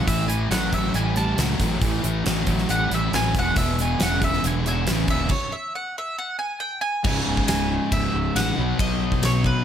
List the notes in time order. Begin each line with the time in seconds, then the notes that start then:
0.07 A1 A2 E3 E5, kick, closed hi-hat
0.28 A2 E3 G#5, closed hi-hat
0.50 A1 A2 F#3 F#5, snare, closed hi-hat
0.72 A2 F#3 E5, kick, closed hi-hat
0.94 A1 A2 G3 G#5, closed hi-hat
1.16 A2 G3 A5, closed hi-hat
1.38 C#2 A2 F#3, snare, closed hi-hat
1.60 A1 A2 F#3, kick, snare, closed hi-hat
1.81 A1 A2 E3, kick, closed hi-hat
2.03 A1 A2 E3, closed hi-hat
2.25 A1 A2 F#3, snare, closed hi-hat
2.47 A1 A2 F#3, kick, closed hi-hat
2.58 snare
2.69 A1 A2 G3 F#5, closed hi-hat
2.91 A1 A2 G3 E5, closed hi-hat
3.13 A1 A2 F#3 G#5, snare, closed hi-hat
3.35 E1 E2 B2, kick, snare, closed hi-hat
3.39 F#5
3.56 E1 E2 B2 E5, kick, closed hi-hat
3.79 E2 B2 G#5, closed hi-hat
4.00 E1 E2 C#3 F#5, snare, closed hi-hat
4.22 E2 C#3 E5, kick, closed hi-hat
4.33 snare
4.44 E1 E2 D3 G#5, closed hi-hat
4.66 E2 D3 E5 G#5, closed hi-hat
4.87 A1 E2 C#3, snare, closed hi-hat
5.08 D#1 E2 C#3 E5, kick, closed hi-hat
5.29 C#5, kick, crash
5.52 E5
5.75 F#5
5.98 E5
6.18 F#5
6.39 G#5
6.60 G5
6.81 G#5
7.04 C#1 C#2 G#2 C#3 G#5, kick, crash
7.28 C#1
7.37 kick
7.48 C#1 G#5, snare, ride bell
7.92 C#1 E5, kick, ride bell
8.14 C#1
8.35 A1 F#5, snare, ride bell
8.56 B1 B2 F#3 B3
8.79 B1 D#5, kick, ride bell
9.12 kick
9.22 B1 C#5, snare, ride bell
9.44 B4, kick